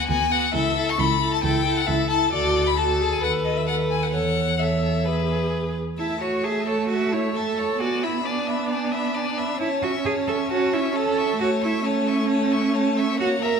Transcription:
0.08 0.46 D2 medium
0.08 0.31 B3 soft
0.08 0.31 F#4 soft
0.08 0.33 G#5 medium
0.31 0.54 B3 soft
0.31 0.53 F#4 soft
0.31 0.53 F#5 medium
0.54 0.91 C#2 medium
0.54 0.76 E4 soft
0.54 0.76 A4 soft
0.54 0.91 E5 medium
0.77 0.98 E4 soft
0.77 0.98 A4 soft
0.90 1.01 C#6 medium
0.98 1.36 C#2 medium
0.98 1.20 E4 soft
0.98 1.20 A4 soft
0.98 1.32 B5 medium
1.21 1.43 E4 soft
1.21 1.42 A4 soft
1.33 1.43 A5 medium
1.43 1.80 C#2 medium
1.43 1.65 E4 medium
1.43 1.65 A4 soft
1.43 1.79 G5 medium
1.65 1.87 E4 soft
1.65 1.86 A4 soft
1.77 1.88 F#5 medium
1.86 2.25 C#2 medium
1.86 2.10 E4 soft
1.86 2.08 A4 soft
1.86 2.09 E5 medium
2.08 2.32 E4 soft
2.08 2.31 A4 soft
2.08 2.32 A5 medium
2.32 3.19 D2 medium
2.32 2.75 F#4 soft
2.32 2.74 A4 soft
2.32 2.68 D5 medium
2.67 2.79 B5 medium
2.75 3.02 F#4 soft
2.75 3.23 A4 soft
2.75 3.14 A5 medium
3.01 3.25 G#4 soft
3.13 3.22 G#5 medium
3.21 4.15 D#2 soft
3.21 3.67 A4 soft
3.21 3.66 B4 soft
3.21 3.31 F#5 medium
3.45 3.58 D#5 medium
3.57 3.67 E5 soft
3.66 4.13 A4 soft
3.66 4.14 B4 soft
3.66 3.75 F#5 medium
3.90 4.04 G#5 medium
4.03 4.12 F#5 soft
4.13 5.78 E2 soft
4.13 4.59 A4 soft
4.13 4.58 C#5 soft
4.13 4.60 F#5 medium
4.58 5.08 A4 soft
4.58 5.07 C#5 soft
4.58 5.52 E5 soft
5.05 5.78 G#4 soft
5.05 5.78 B4 soft
5.98 7.76 A3 soft
5.98 6.20 E4 medium
5.98 6.23 E5 soft
5.98 6.23 A5 soft
6.21 6.45 F#4 soft
6.21 6.45 C#5 soft
6.21 6.45 C#6 soft
6.44 6.66 G#4 medium
6.44 6.68 E5 soft
6.44 6.67 A5 soft
6.65 6.88 A4 soft
6.65 6.89 C#5 soft
6.65 6.88 C#6 soft
6.89 7.14 F#4 medium
6.89 7.15 E5 soft
6.89 7.14 A5 soft
7.12 7.35 E4 soft
7.12 7.37 C#5 soft
7.12 7.37 C#6 soft
7.35 7.82 A4 medium
7.35 7.59 E5 soft
7.35 7.60 A5 soft
7.58 7.80 C#5 soft
7.58 7.80 C#6 soft
7.81 9.58 B3 soft
7.81 8.05 F#4 medium
7.81 8.05 D5 soft
7.81 8.05 G#5 soft
8.03 8.25 E4 medium
8.03 8.27 E5 soft
8.03 8.28 B5 soft
8.25 9.58 D4 medium
8.25 8.48 D5 soft
8.25 8.51 G#5 soft
8.47 8.69 E5 soft
8.47 8.70 B5 soft
8.69 8.93 D5 soft
8.69 8.95 G#5 soft
8.92 9.16 E5 soft
8.92 9.18 B5 soft
9.15 9.40 D5 soft
9.15 9.39 G#5 soft
9.38 9.60 E5 soft
9.38 9.60 B5 soft
9.60 11.37 C#4 medium
9.60 9.68 E4 medium
9.60 9.85 C#5 soft
9.60 9.84 A5 soft
9.82 9.90 F#4 medium
9.82 10.08 E5 soft
9.82 10.07 C#6 soft
10.05 10.13 G#4 medium
10.05 10.30 C#5 soft
10.05 10.29 A5 soft
10.27 10.36 A4 medium
10.27 10.51 E5 soft
10.27 10.49 C#6 soft
10.49 10.75 F#4 medium
10.49 10.75 C#5 soft
10.49 10.74 A5 soft
10.73 10.95 E4 medium
10.73 10.97 E5 soft
10.73 10.97 C#6 soft
10.95 11.39 A4 medium
10.95 11.19 C#5 soft
10.95 11.18 A5 soft
11.17 11.40 E5 soft
11.17 11.38 C#6 soft
11.39 13.16 A3 medium
11.39 11.48 F#4 medium
11.39 11.65 C#5 soft
11.39 11.63 A5 soft
11.62 11.85 E4 medium
11.62 11.88 E5 soft
11.62 11.86 C#6 soft
11.84 13.17 C#4 medium
11.84 12.09 C#5 soft
11.84 12.09 A5 soft
12.07 12.28 E5 soft
12.07 12.28 C#6 soft
12.29 12.54 C#5 soft
12.29 12.53 A5 soft
12.52 12.75 E5 soft
12.52 12.76 C#6 soft
12.74 12.99 C#5 soft
12.74 13.00 A5 soft
12.97 13.19 E5 soft
12.97 13.19 C#6 soft
13.19 13.60 A#3 medium
13.19 13.28 F#4 medium
13.19 13.44 C#5 soft
13.19 13.43 F#5 soft
13.41 13.60 A#4 medium
13.41 13.60 E5 soft
13.41 13.60 A#5 soft

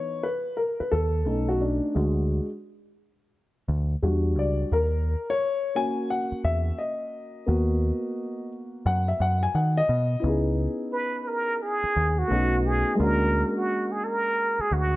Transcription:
0.00 0.19 E3 soft
0.00 0.19 B3 soft
0.00 0.20 D#4 medium
0.00 0.25 C#5 loud
0.23 0.55 B4 medium
0.57 0.80 A#4 medium
0.80 0.93 B4 medium
0.80 muted picked electric bass stroke soft
0.92 1.27 D#2 medium
0.92 1.50 A4 medium
1.25 1.79 B1 loud
1.25 1.92 A3 soft
1.25 1.92 C#4 soft
1.25 1.92 D#4 medium
1.49 1.60 F#4 medium
1.61 1.94 D4 medium
1.95 2.39 D2 medium
1.95 2.45 G#3 medium
1.95 2.45 D4 soft
1.95 2.45 F#4 medium
3.68 3.94 D2 medium
4.02 4.37 E2 medium
4.02 4.68 G3 medium
4.02 4.68 D4 soft
4.02 4.69 F#4 medium
4.37 4.63 C#2 medium
4.37 4.70 D5 medium
4.72 5.15 D#2 medium
4.72 5.31 A#4 medium
5.30 5.77 C#5 loud
5.75 7.44 A#3 medium
5.75 7.44 C#4 soft
5.75 7.44 F#4 medium
5.75 6.08 G#5 loud
6.10 6.46 F#5 medium
6.32 muted picked electric bass stroke soft
6.44 6.70 E2 medium
6.44 6.80 E5 medium
6.78 8.47 D#5 medium
7.46 7.91 D#2 medium
7.46 10.19 A#3 medium
7.46 10.19 B3 medium
7.46 10.20 F#4 medium
8.86 9.12 F#2 loud
8.86 9.07 F#5 medium
9.08 9.19 E5 medium
9.20 9.46 F#2 medium
9.20 9.41 F#5 medium
9.43 9.55 G#5 medium
9.55 9.81 D#3 medium
9.55 9.78 F#5 medium
9.77 10.21 D#5 loud
9.89 10.15 B2 medium
10.20 10.66 C#2 loud
10.20 12.25 B3 medium
10.20 12.26 C#4 soft
10.20 12.24 E4 medium
10.25 12.27 D#4 medium
10.25 12.28 G#4 medium
10.93 11.22 B4 medium
11.22 11.29 B4 medium
11.27 11.63 A#4 medium
11.62 12.20 G#4 medium
11.84 muted picked electric bass stroke soft
11.96 12.22 D#2 medium
12.19 12.67 F#4 loud
12.28 12.83 B1 loud
12.28 12.98 A3 medium
12.28 12.99 B3 medium
12.28 12.98 C#4 medium
12.28 13.00 D#4 medium
12.28 13.00 F#4 medium
12.66 13.02 G#4 medium
12.95 14.96 G#3 medium
12.95 14.96 A#3 medium
12.95 14.96 C#4 medium
13.00 13.42 D2 loud
13.00 14.96 D4 medium
13.00 14.96 F#4 medium
13.00 13.56 A#4 loud
13.57 13.93 F#4 medium
13.92 14.06 G#4 medium
14.04 14.62 A#4 loud
14.59 14.75 G#4 medium
14.59 muted picked electric bass stroke soft
14.71 14.96 D2 medium
14.71 14.96 F#4 medium

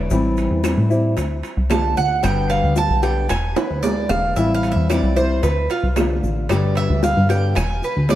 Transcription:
0.00 0.10 G#3 medium
0.00 0.10 B3 medium
0.00 0.11 E4 medium
0.10 0.49 A1 loud
0.10 0.63 E3 medium
0.10 0.63 G3 medium
0.10 0.64 C4 medium
0.10 0.64 E4 medium
0.10 high bongo medium
0.10 maracas medium
0.37 high bongo soft
0.37 high timbale medium
0.37 maracas soft
0.50 0.76 E2 loud
0.64 0.90 E3 medium
0.64 0.90 G3 medium
0.64 0.90 C4 medium
0.64 0.89 E4 medium
0.64 high bongo medium
0.64 high timbale medium
0.64 low timbale medium
0.64 claves medium
0.64 maracas medium
0.77 1.15 A2 medium
0.90 1.17 G3 medium
0.90 1.16 C4 medium
0.90 1.16 E4 medium
0.90 maracas soft
1.17 1.43 D2 loud
1.17 muted nylon-string guitar stroke medium
1.17 high bongo medium
1.17 high timbale medium
1.17 maracas medium
1.43 high bongo soft
1.43 high timbale medium
1.43 maracas soft
1.57 1.95 C2 medium
1.70 2.22 D3 soft
1.70 2.23 A3 soft
1.70 2.23 D4 medium
1.70 2.23 F4 medium
1.70 1.96 A5 loud
1.70 high bongo medium
1.70 low bongo medium
1.70 high timbale loud
1.70 low timbale medium
1.70 claves medium
1.70 maracas medium
1.96 2.23 D2 loud
1.96 2.23 F#5 loud
1.96 high bongo soft
1.96 maracas soft
2.22 2.62 G1 loud
2.22 2.75 B2 medium
2.22 2.74 D3 medium
2.22 2.75 G3 medium
2.22 2.76 B3 medium
2.22 2.76 G4 medium
2.22 2.50 G5 loud
2.22 high bongo medium
2.22 high timbale loud
2.22 claves medium
2.22 maracas medium
2.50 2.76 F5 medium
2.50 high timbale medium
2.50 maracas soft
2.63 2.89 D2 medium
2.76 3.02 D3 medium
2.76 3.02 G3 medium
2.76 3.02 B3 medium
2.76 3.01 G4 medium
2.76 3.02 A5 loud
2.76 high bongo medium
2.76 low timbale medium
2.76 maracas medium
2.90 3.28 B1 medium
3.02 3.29 D3 medium
3.02 3.29 G3 medium
3.02 3.29 B3 medium
3.02 3.29 G4 medium
3.02 3.29 G5 medium
3.02 high bongo soft
3.02 high timbale medium
3.02 maracas soft
3.29 3.56 E1 loud
3.29 3.56 G#5 loud
3.29 muted nylon-string guitar stroke medium
3.29 high bongo medium
3.29 high timbale loud
3.29 claves medium
3.29 maracas medium
3.56 3.83 B4 medium
3.56 high bongo medium
3.56 high timbale medium
3.56 maracas soft
3.70 4.08 D2 loud
3.83 4.36 D3 soft
3.83 4.36 G#3 soft
3.83 4.36 B3 medium
3.83 4.37 E4 medium
3.83 4.09 D5 medium
3.83 low timbale loud
3.83 maracas medium
4.09 4.35 E1 medium
4.09 4.36 F5 loud
4.09 low bongo loud
4.09 low timbale medium
4.09 claves medium
4.09 maracas soft
4.36 4.74 A1 loud
4.36 4.89 E3 medium
4.36 4.89 G3 medium
4.36 4.89 C4 medium
4.36 4.90 E4 medium
4.36 4.54 E5 medium
4.36 high bongo medium
4.36 maracas medium
4.54 4.71 F5 loud
4.63 high bongo soft
4.63 high timbale medium
4.63 maracas soft
4.72 5.02 E2 loud
4.72 4.89 E5 medium
4.90 5.16 E3 soft
4.90 5.16 G3 medium
4.90 5.16 C4 medium
4.90 5.15 E4 medium
4.90 5.16 D5 medium
4.90 high bongo medium
4.90 high timbale medium
4.90 low timbale medium
4.90 claves medium
4.90 maracas medium
5.03 5.41 C2 medium
5.16 5.43 G3 medium
5.16 5.43 C4 medium
5.16 5.42 E4 medium
5.16 5.42 C5 medium
5.16 maracas soft
5.43 5.68 D2 loud
5.43 5.69 B4 medium
5.43 muted nylon-string guitar stroke medium
5.43 high bongo medium
5.43 high timbale medium
5.43 maracas medium
5.69 5.86 F4 medium
5.69 high bongo soft
5.69 high timbale medium
5.69 maracas soft
5.83 6.21 C2 medium
5.96 6.49 D3 medium
5.96 6.49 A3 medium
5.96 6.50 D4 medium
5.96 6.50 F4 medium
5.96 high bongo medium
5.96 low bongo medium
5.96 high timbale medium
5.96 low timbale medium
5.96 claves medium
5.96 maracas medium
6.23 6.48 A1 loud
6.23 high bongo soft
6.23 maracas soft
6.49 6.88 G1 loud
6.49 7.02 B2 medium
6.49 7.01 D3 medium
6.49 7.02 G3 medium
6.49 7.02 B3 medium
6.49 7.03 G4 medium
6.49 6.76 D5 medium
6.49 high bongo medium
6.49 high timbale loud
6.49 claves medium
6.49 maracas medium
6.75 7.03 E5 loud
6.75 high timbale medium
6.75 maracas soft
6.89 7.15 D2 loud
7.02 7.28 D3 medium
7.02 7.29 G3 medium
7.02 7.29 B3 medium
7.02 7.28 G4 medium
7.02 7.29 F5 medium
7.02 high bongo medium
7.02 low timbale medium
7.02 maracas medium
7.17 7.55 G2 medium
7.29 7.55 D3 medium
7.29 7.56 G3 medium
7.29 7.56 B3 medium
7.29 7.55 G4 medium
7.29 7.56 G5 medium
7.29 high bongo soft
7.29 high timbale medium
7.29 maracas soft
7.55 7.82 E1 loud
7.55 7.82 G#5 loud
7.55 muted nylon-string guitar stroke medium
7.55 high bongo medium
7.55 high timbale medium
7.55 claves medium
7.55 maracas medium
7.82 8.09 B4 medium
7.82 high bongo soft
7.82 maracas soft
7.96 8.15 D2 medium
8.09 8.15 D3 soft
8.09 8.15 G#3 medium
8.09 8.15 B3 soft
8.09 8.15 E4 medium
8.09 8.15 D5 loud
8.09 high bongo medium
8.09 low bongo medium
8.09 high timbale medium
8.09 low timbale medium
8.09 maracas medium

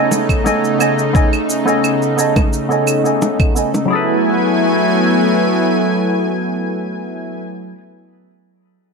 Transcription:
0.00 3.87 C#3 medium
0.00 3.87 A3 medium
0.00 0.41 B3 medium
0.00 3.87 D#4 medium
0.00 0.42 A4 medium
0.00 0.42 C#5 medium
0.00 0.42 D#5 medium
0.00 0.43 G#5 medium
0.11 high bongo medium
0.11 cabasa medium
0.29 kick medium
0.29 cabasa soft
0.29 claves medium
0.44 0.76 B3 medium
0.44 0.76 A4 medium
0.44 0.76 C#5 medium
0.44 0.77 D#5 medium
0.44 0.77 G#5 medium
0.44 high bongo medium
0.44 cabasa soft
0.64 cabasa soft
0.79 1.01 B3 medium
0.79 1.01 A4 medium
0.79 1.02 C#5 medium
0.79 1.02 D#5 medium
0.79 1.03 G#5 medium
0.79 cabasa medium
0.79 claves medium
0.99 cabasa soft
1.13 1.28 B3 medium
1.13 1.28 A4 medium
1.13 1.28 C#5 medium
1.13 1.29 D#5 medium
1.13 1.29 G#5 medium
1.13 kick loud
1.13 cabasa soft
1.33 cabasa soft
1.33 claves medium
1.50 cabasa medium
1.66 2.13 B3 medium
1.66 2.14 A4 medium
1.66 2.14 C#5 medium
1.66 2.15 D#5 medium
1.66 2.15 G#5 medium
1.66 cabasa soft
1.84 cabasa soft
1.84 claves medium
2.02 cabasa soft
2.17 2.39 B3 medium
2.17 2.39 A4 medium
2.17 2.40 C#5 medium
2.17 2.40 D#5 medium
2.17 2.40 A5 medium
2.17 cabasa medium
2.36 kick medium
2.36 high bongo medium
2.36 cabasa soft
2.36 claves medium
2.53 cabasa soft
2.69 3.01 B3 medium
2.69 3.01 A4 medium
2.69 3.02 C#5 medium
2.69 3.02 D#5 medium
2.69 3.02 G#5 medium
2.69 cabasa soft
2.87 cabasa medium
2.87 claves medium
3.04 3.51 B3 medium
3.04 3.52 A4 medium
3.04 3.52 C#5 medium
3.04 3.53 D#5 medium
3.04 3.53 G#5 medium
3.04 cabasa soft
3.22 high bongo medium
3.22 cabasa soft
3.40 kick loud
3.40 cabasa soft
3.40 claves medium
3.55 3.69 B3 medium
3.55 3.69 A4 medium
3.55 3.70 C#5 medium
3.55 3.70 D#5 medium
3.55 3.71 G#5 medium
3.55 cabasa medium
3.74 high bongo medium
3.74 cabasa soft
3.86 7.73 F#3 medium
3.86 7.75 E4 medium
3.90 7.43 F#3 medium
3.90 7.43 A3 medium
3.90 7.42 B3 medium
3.90 7.43 E4 medium
3.90 7.78 G#4 medium
3.90 7.80 A4 medium
3.90 7.43 G#5 medium
3.95 7.82 B4 medium

